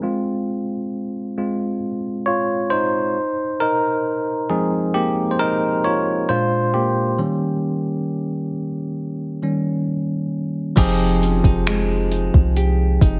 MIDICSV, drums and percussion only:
0, 0, Header, 1, 2, 480
1, 0, Start_track
1, 0, Key_signature, -4, "minor"
1, 0, Tempo, 895522
1, 14, Time_signature, 4, 2, 24, 8
1, 7074, End_track
2, 0, Start_track
2, 0, Title_t, "Drums"
2, 5773, Note_on_c, 9, 36, 114
2, 5773, Note_on_c, 9, 42, 74
2, 5773, Note_on_c, 9, 49, 87
2, 5826, Note_off_c, 9, 49, 0
2, 5827, Note_off_c, 9, 36, 0
2, 5827, Note_off_c, 9, 42, 0
2, 6019, Note_on_c, 9, 42, 68
2, 6073, Note_off_c, 9, 42, 0
2, 6133, Note_on_c, 9, 36, 82
2, 6186, Note_off_c, 9, 36, 0
2, 6254, Note_on_c, 9, 42, 65
2, 6256, Note_on_c, 9, 26, 113
2, 6308, Note_off_c, 9, 42, 0
2, 6310, Note_off_c, 9, 26, 0
2, 6494, Note_on_c, 9, 42, 73
2, 6548, Note_off_c, 9, 42, 0
2, 6615, Note_on_c, 9, 36, 94
2, 6669, Note_off_c, 9, 36, 0
2, 6735, Note_on_c, 9, 42, 57
2, 6789, Note_off_c, 9, 42, 0
2, 6976, Note_on_c, 9, 36, 104
2, 6979, Note_on_c, 9, 42, 63
2, 7029, Note_off_c, 9, 36, 0
2, 7033, Note_off_c, 9, 42, 0
2, 7074, End_track
0, 0, End_of_file